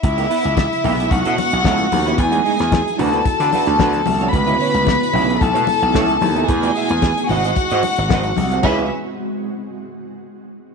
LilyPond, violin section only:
\new Staff \with { instrumentName = "Violin section" } { \time 4/4 \key cis \minor \tempo 4 = 112 <e' e''>2 <fis' fis''>2 | <gis' gis''>4. <a' a''>2~ <a' a''>8 | <b' b''>2 <a' a''>2 | <gis' gis''>4. <fis' fis''>2~ <fis' fis''>8 |
<cis' b' e''>8 r2. r8 | }